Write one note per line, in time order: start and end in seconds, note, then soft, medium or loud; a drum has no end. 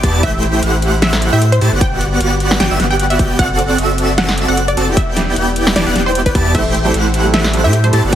0.00 0.25 E2 loud
0.00 0.21 B3 loud
0.00 0.21 E4 medium
0.00 0.21 G4 medium
0.00 0.21 D5 medium
0.00 0.21 A5 loud
0.00 0.12 D6 medium
0.00 0.21 A6 loud
0.00 kick loud
0.00 closed hi-hat medium
0.23 0.61 A1 loud
0.23 0.61 A3 loud
0.23 0.61 E4 medium
0.23 0.61 G4 medium
0.23 0.61 C5 medium
0.23 0.41 E5 loud
0.23 0.61 G5 loud
0.23 0.60 G6 loud
0.23 kick loud
0.23 closed hi-hat medium
0.43 closed hi-hat medium
0.63 1.30 A1 medium
0.63 1.30 A3 medium
0.63 1.30 E4 medium
0.63 1.30 G4 medium
0.63 1.30 C5 medium
0.63 1.30 F#5 loud
0.63 1.30 F#6 loud
0.63 closed hi-hat medium
0.82 closed hi-hat medium
1.02 1.20 E5 loud
1.02 snare loud
1.02 closed hi-hat medium
1.13 snare medium
1.22 closed hi-hat medium
1.33 1.60 A2 loud
1.33 1.42 A3 medium
1.33 1.42 E4 medium
1.33 1.42 G4 medium
1.33 1.42 C5 medium
1.33 1.44 E5 medium
1.33 1.42 G5 loud
1.33 1.42 G6 loud
1.42 closed hi-hat medium
1.52 1.70 C5 medium
1.52 closed hi-hat medium
1.61 1.70 A2 loud
1.61 1.70 A3 loud
1.61 1.70 E4 medium
1.61 1.70 G4 medium
1.61 1.70 C5 medium
1.61 1.70 A5 loud
1.61 1.70 A6 loud
1.61 closed hi-hat medium
1.72 2.19 G1 loud
1.72 2.18 B3 medium
1.72 2.18 F#4 medium
1.72 2.18 G4 medium
1.72 2.18 D5 medium
1.72 2.18 F#5 medium
1.72 2.18 F#6 medium
1.81 1.99 G5 loud
1.81 kick loud
1.81 closed hi-hat medium
2.01 closed hi-hat medium
2.21 2.58 G1 medium
2.21 2.58 B3 medium
2.21 2.58 F#4 medium
2.21 2.58 G4 medium
2.21 2.58 D5 medium
2.21 2.58 F#5 medium
2.21 2.58 F#6 medium
2.21 closed hi-hat medium
2.40 closed hi-hat medium
2.51 snare medium
2.60 2.69 G1 loud
2.60 2.68 B3 medium
2.60 2.68 F#4 medium
2.60 2.68 G4 medium
2.60 2.68 D5 medium
2.60 2.78 G5 loud
2.60 2.68 G5 medium
2.60 2.68 G6 medium
2.60 snare loud
2.60 closed hi-hat medium
2.71 2.78 G1 loud
2.71 2.78 B3 loud
2.71 2.78 F#4 medium
2.71 2.78 G4 medium
2.71 2.78 D5 medium
2.71 2.78 E5 loud
2.71 2.78 E6 loud
2.80 3.17 G1 loud
2.80 3.17 B3 medium
2.80 3.17 F#4 medium
2.80 3.17 G4 medium
2.80 3.17 D5 medium
2.80 3.17 F#5 medium
2.80 3.17 F#6 medium
2.80 snare medium
2.80 closed hi-hat medium
2.91 3.02 G5 medium
2.99 closed hi-hat medium
3.10 3.28 E5 medium
3.10 closed hi-hat medium
3.19 3.37 G1 loud
3.19 3.37 B3 loud
3.19 3.37 G4 medium
3.19 3.37 G6 loud
3.19 kick loud
3.19 closed hi-hat medium
3.39 3.77 F#1 loud
3.39 3.76 C4 loud
3.39 3.76 F#4 medium
3.39 3.76 A4 medium
3.39 3.76 D5 medium
3.39 3.57 F#5 loud
3.39 3.76 F#5 loud
3.39 3.76 F#6 loud
3.39 kick loud
3.39 closed hi-hat medium
3.59 closed hi-hat medium
3.78 4.46 F#1 medium
3.78 4.46 C4 medium
3.78 4.46 F#4 medium
3.78 4.46 A4 medium
3.78 4.46 D5 medium
3.78 4.46 E5 loud
3.78 4.46 E6 loud
3.78 closed hi-hat medium
3.98 closed hi-hat medium
4.18 4.36 F#5 loud
4.18 snare loud
4.18 closed hi-hat medium
4.29 snare medium
4.38 closed hi-hat medium
4.48 4.75 F#1 loud
4.48 4.58 C4 medium
4.48 4.58 F#4 medium
4.48 4.58 A4 medium
4.48 4.58 D5 medium
4.48 4.60 F#5 medium
4.48 4.58 F#5 loud
4.48 4.58 F#6 loud
4.57 closed hi-hat medium
4.68 4.86 D5 medium
4.68 closed hi-hat medium
4.77 4.89 F#1 loud
4.77 4.85 C4 loud
4.77 4.85 F#4 medium
4.77 4.85 A4 medium
4.77 4.85 D5 medium
4.77 4.85 A5 loud
4.77 4.85 A6 loud
4.77 closed hi-hat medium
4.88 5.35 E1 loud
4.88 5.34 B3 medium
4.88 5.34 E4 medium
4.88 5.34 G4 medium
4.88 5.34 D5 medium
4.88 5.34 G5 medium
4.88 5.34 G6 medium
4.97 5.15 E5 loud
4.97 kick loud
4.97 closed hi-hat medium
5.17 snare medium
5.17 closed hi-hat medium
5.36 5.74 E1 loud
5.36 5.74 B3 medium
5.36 5.74 E4 medium
5.36 5.74 G4 medium
5.36 5.74 D5 medium
5.36 5.74 G5 medium
5.36 5.74 G6 medium
5.36 closed hi-hat medium
5.56 closed hi-hat medium
5.67 snare medium
5.76 5.84 E1 loud
5.76 5.84 B3 medium
5.76 5.84 E4 medium
5.76 5.84 G4 medium
5.76 5.84 D5 medium
5.76 5.94 D5 loud
5.76 5.84 A5 medium
5.76 5.84 A6 medium
5.76 snare loud
5.76 closed hi-hat medium
5.87 5.94 E1 loud
5.87 5.94 B3 loud
5.87 5.94 E4 medium
5.87 5.94 G4 medium
5.87 5.94 D5 medium
5.87 5.94 F#5 loud
5.87 5.94 F#6 loud
5.96 6.33 E1 loud
5.96 6.33 B3 medium
5.96 6.33 E4 medium
5.96 6.33 G4 medium
5.96 6.33 D5 medium
5.96 6.33 G5 medium
5.96 6.33 G6 medium
5.96 snare medium
5.96 closed hi-hat medium
6.06 6.18 C5 medium
6.15 closed hi-hat medium
6.26 6.44 B4 medium
6.26 kick medium
6.26 closed hi-hat medium
6.35 6.56 E2 medium
6.35 6.53 B3 loud
6.35 6.53 E4 medium
6.35 6.53 G4 medium
6.35 6.53 D5 medium
6.35 6.53 A5 loud
6.35 6.53 A6 loud
6.35 kick loud
6.35 closed hi-hat medium
6.54 6.92 A1 loud
6.54 6.64 G3 medium
6.54 6.64 A3 medium
6.54 6.92 A3 loud
6.54 6.64 C4 medium
6.54 6.92 E4 medium
6.54 6.64 E4 medium
6.54 6.92 G4 medium
6.54 6.65 A4 medium
6.54 6.92 C5 medium
6.54 6.73 E5 loud
6.54 6.92 G5 loud
6.54 6.92 G6 loud
6.54 kick loud
6.54 closed hi-hat medium
6.54 crash medium
6.74 closed hi-hat medium
6.84 6.93 G3 loud
6.84 6.93 A3 loud
6.84 6.93 C4 medium
6.84 6.93 E4 medium
6.84 6.94 A4 loud
6.94 7.66 A1 loud
6.94 7.62 A3 medium
6.94 7.62 E4 medium
6.94 7.62 G4 medium
6.94 7.62 C5 medium
6.94 7.62 F#5 loud
6.94 7.62 F#6 loud
6.94 closed hi-hat medium
7.14 closed hi-hat medium
7.24 7.51 G3 medium
7.24 7.51 A3 medium
7.24 7.51 C4 medium
7.24 7.52 E4 medium
7.24 7.52 A4 medium
7.34 7.52 E5 loud
7.34 snare loud
7.34 closed hi-hat medium
7.44 snare medium
7.53 7.62 G3 medium
7.53 7.63 A3 medium
7.53 7.63 C4 medium
7.53 7.63 E4 medium
7.53 7.63 A4 medium
7.53 closed hi-hat medium
7.64 7.91 A2 loud
7.64 7.74 A3 medium
7.64 7.74 E4 medium
7.64 7.74 G4 medium
7.64 7.74 C5 medium
7.64 7.75 E5 medium
7.64 7.74 G5 loud
7.64 7.74 G6 loud
7.73 closed hi-hat medium
7.83 8.10 G3 medium
7.83 8.10 A3 medium
7.83 8.11 C4 medium
7.83 8.11 E4 medium
7.83 8.11 A4 medium
7.83 8.02 C5 medium
7.83 closed hi-hat medium
7.93 8.02 A2 loud
7.93 8.01 A3 loud
7.93 8.01 E4 medium
7.93 8.01 G4 medium
7.93 8.01 C5 medium
7.93 8.01 A5 loud
7.93 8.01 A6 loud
7.93 closed hi-hat medium
8.04 8.15 G1 loud
8.04 8.15 B3 medium
8.04 8.15 F#4 medium
8.04 8.15 G4 medium
8.04 8.15 D5 medium
8.04 8.15 F#5 medium
8.04 8.15 F#6 medium
8.12 8.15 G3 medium
8.12 8.15 B3 medium